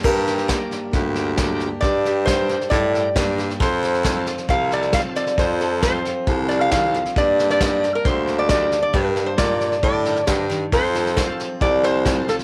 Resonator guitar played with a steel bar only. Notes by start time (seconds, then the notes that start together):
0.05 A#4
1.81 D5
2.25 C5
2.70 D5
3.62 C5
4.50 F5
4.73 D5
4.94 F5
5.16 D5
5.39 C5
5.83 C5
6.49 D5
6.61 F5
6.72 F5
7.18 D5
7.51 D5
7.64 D5
7.95 A#4
8.06 C5
8.39 D5
8.51 D5
8.83 D5
8.93 A#4
9.27 C5
9.38 D5
9.84 D5
10.31 C5
10.73 C5
11.62 D5
11.84 C5
12.29 A4